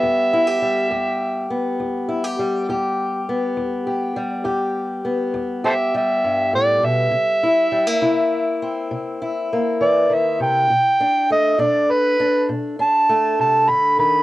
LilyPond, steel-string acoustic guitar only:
\new Staff \with { instrumentName = "Steel-string acoustic guitar" } { \clef bass \time 12/8 \key e \minor \tempo 4. = 67 << { <g b>8 e'16 g'16 g8 g'4 b4 e'16 g'16 g8 g'4 b8~ | b8 g'8 g8 g'4 b4 g'8 g2~ | g8 e'8 g16 bes16 e'4 c'4 e'8 bes2 | r8 d'8 a8 d'4 d'4 d'8 a2 | } \\ { e,4 r8 e,4 r8 e,4 r8 e,4 r8 | e,4 r8 e,4 r8 e,4 r8 g,8 a,8 b,8 | c4 r8 c4 r8 c4 r8 e8 dis8 c8 | b,4 r8 b,4 r8 b,4 r8 c8 d8 dis8 | } >> }